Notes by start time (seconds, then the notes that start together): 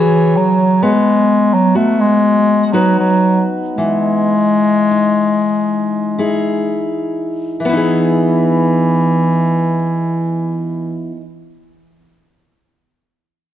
Already playing: C#3 E3 F#4 G#4 C#5
0.37 F#3
0.83 G#3 B3
1.54 F#3
1.75 A3 F#4
2.01 G#3
2.66 G#3
2.73 F#3 D#4 F#4 B4
2.99 F#3
3.76 E3 G#3
4.91 D#4
6.19 D#4 E4 G#4
7.60 E3
7.65 E3 B3
7.69 D#4 E4
7.77 G#4